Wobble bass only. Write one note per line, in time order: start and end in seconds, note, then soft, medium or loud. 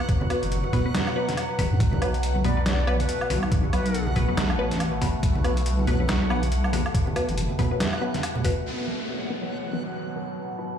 0.43 0.62 F#1 loud
1.71 1.79 F#2 medium
1.80 3.08 B1 loud
3.30 4.27 B1 loud
4.37 4.57 B1 loud
4.59 5.13 A1 medium
5.23 5.86 B1 loud
5.87 6.07 B1 loud
6.09 6.84 B1 loud
7.29 7.48 F#1 loud